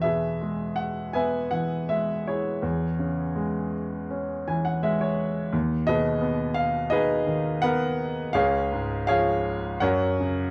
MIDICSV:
0, 0, Header, 1, 2, 480
1, 0, Start_track
1, 0, Tempo, 742574
1, 1703, Time_signature, 4, 2, 24, 8
1, 2664, Tempo, 700117
1, 5064, Tempo, 729927
1, 6504, Tempo, 771208
1, 6936, End_track
2, 0, Start_track
2, 0, Title_t, "Grand piano"
2, 0, Program_c, 0, 0
2, 0, Control_c, 0, 64, 127
2, 0, Note_on_c, 0, 40, 50
2, 9, Note_on_c, 0, 76, 83
2, 21, Note_on_c, 0, 68, 49
2, 25, Note_on_c, 0, 71, 52
2, 28, Note_on_c, 0, 47, 38
2, 267, Note_on_c, 0, 56, 44
2, 490, Note_on_c, 0, 78, 74
2, 507, Note_off_c, 0, 76, 0
2, 735, Note_on_c, 0, 80, 78
2, 736, Note_off_c, 0, 71, 0
2, 741, Note_off_c, 0, 78, 0
2, 743, Note_on_c, 0, 59, 45
2, 745, Note_on_c, 0, 71, 59
2, 746, Note_on_c, 0, 76, 61
2, 953, Note_off_c, 0, 68, 0
2, 956, Note_off_c, 0, 47, 0
2, 976, Note_on_c, 0, 78, 78
2, 978, Note_on_c, 0, 52, 42
2, 986, Note_off_c, 0, 80, 0
2, 1201, Note_off_c, 0, 56, 0
2, 1213, Note_off_c, 0, 76, 0
2, 1222, Note_on_c, 0, 76, 77
2, 1223, Note_on_c, 0, 56, 47
2, 1230, Note_off_c, 0, 78, 0
2, 1471, Note_on_c, 0, 73, 65
2, 1473, Note_off_c, 0, 76, 0
2, 1479, Note_on_c, 0, 64, 46
2, 1481, Note_on_c, 0, 68, 48
2, 1676, Note_off_c, 0, 40, 0
2, 1680, Note_off_c, 0, 59, 0
2, 1681, Note_off_c, 0, 52, 0
2, 1681, Note_off_c, 0, 71, 0
2, 1688, Note_off_c, 0, 56, 0
2, 1696, Note_on_c, 0, 40, 62
2, 1710, Control_c, 0, 64, 0
2, 1835, Control_c, 0, 64, 127
2, 1933, Note_on_c, 0, 49, 44
2, 2169, Note_on_c, 0, 56, 52
2, 2400, Note_off_c, 0, 73, 0
2, 2404, Note_off_c, 0, 64, 0
2, 2405, Note_off_c, 0, 68, 0
2, 2653, Note_on_c, 0, 61, 57
2, 2884, Note_off_c, 0, 49, 0
2, 2906, Note_on_c, 0, 80, 67
2, 2908, Note_on_c, 0, 52, 51
2, 3024, Note_off_c, 0, 80, 0
2, 3024, Note_on_c, 0, 78, 71
2, 3124, Note_off_c, 0, 56, 0
2, 3142, Note_off_c, 0, 78, 0
2, 3147, Note_on_c, 0, 56, 53
2, 3148, Note_on_c, 0, 76, 72
2, 3264, Note_off_c, 0, 76, 0
2, 3270, Note_on_c, 0, 73, 71
2, 3601, Note_off_c, 0, 61, 0
2, 3603, Note_off_c, 0, 40, 0
2, 3606, Note_off_c, 0, 73, 0
2, 3609, Note_off_c, 0, 52, 0
2, 3615, Note_off_c, 0, 56, 0
2, 3625, Note_on_c, 0, 39, 68
2, 3643, Control_c, 0, 64, 0
2, 3756, Control_c, 0, 64, 127
2, 3861, Note_on_c, 0, 75, 90
2, 3867, Note_on_c, 0, 47, 52
2, 3875, Note_on_c, 0, 71, 67
2, 3876, Note_on_c, 0, 68, 64
2, 4099, Note_on_c, 0, 59, 56
2, 4327, Note_on_c, 0, 77, 95
2, 4350, Note_off_c, 0, 75, 0
2, 4571, Note_on_c, 0, 75, 95
2, 4573, Note_off_c, 0, 68, 0
2, 4577, Note_off_c, 0, 71, 0
2, 4581, Note_off_c, 0, 77, 0
2, 4581, Note_on_c, 0, 63, 63
2, 4584, Note_on_c, 0, 68, 71
2, 4587, Note_on_c, 0, 71, 73
2, 4793, Note_off_c, 0, 47, 0
2, 4821, Note_on_c, 0, 51, 59
2, 5034, Note_off_c, 0, 59, 0
2, 5060, Note_off_c, 0, 71, 0
2, 5060, Note_on_c, 0, 78, 107
2, 5067, Note_on_c, 0, 59, 58
2, 5069, Note_on_c, 0, 70, 73
2, 5070, Note_on_c, 0, 71, 74
2, 5074, Note_off_c, 0, 75, 0
2, 5510, Note_off_c, 0, 39, 0
2, 5515, Note_off_c, 0, 63, 0
2, 5516, Note_off_c, 0, 68, 0
2, 5516, Note_off_c, 0, 70, 0
2, 5517, Note_off_c, 0, 71, 0
2, 5519, Note_off_c, 0, 51, 0
2, 5528, Note_off_c, 0, 59, 0
2, 5531, Note_on_c, 0, 77, 103
2, 5539, Note_on_c, 0, 37, 74
2, 5542, Note_on_c, 0, 68, 74
2, 5542, Note_on_c, 0, 73, 73
2, 5548, Control_c, 0, 64, 0
2, 5553, Note_off_c, 0, 78, 0
2, 5644, Control_c, 0, 64, 127
2, 5788, Note_on_c, 0, 44, 55
2, 5992, Note_off_c, 0, 77, 0
2, 6016, Note_off_c, 0, 73, 0
2, 6017, Note_off_c, 0, 68, 0
2, 6018, Note_on_c, 0, 77, 104
2, 6026, Note_on_c, 0, 68, 70
2, 6026, Note_on_c, 0, 73, 78
2, 6027, Note_on_c, 0, 53, 63
2, 6477, Note_off_c, 0, 37, 0
2, 6480, Note_off_c, 0, 68, 0
2, 6480, Note_off_c, 0, 73, 0
2, 6485, Note_off_c, 0, 44, 0
2, 6492, Note_off_c, 0, 53, 0
2, 6498, Note_on_c, 0, 78, 91
2, 6505, Note_on_c, 0, 42, 75
2, 6507, Note_on_c, 0, 70, 67
2, 6507, Note_on_c, 0, 73, 70
2, 6513, Control_c, 0, 64, 0
2, 6516, Note_off_c, 0, 77, 0
2, 6609, Control_c, 0, 64, 127
2, 6745, Note_on_c, 0, 49, 55
2, 6936, Note_off_c, 0, 42, 0
2, 6936, Note_off_c, 0, 49, 0
2, 6936, Note_off_c, 0, 70, 0
2, 6936, Note_off_c, 0, 73, 0
2, 6936, Note_off_c, 0, 78, 0
2, 6936, End_track
0, 0, End_of_file